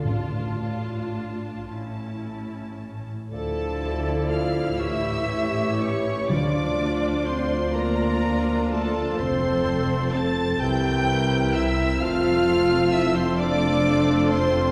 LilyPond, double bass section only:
\new Staff \with { instrumentName = "Double bass section" } { \clef bass \time 6/8 \key d \minor \tempo 4. = 41 a,,4. a,,4. | d,4. a,,4. | d,2. | f,,4. c,4. |
f,,2. | }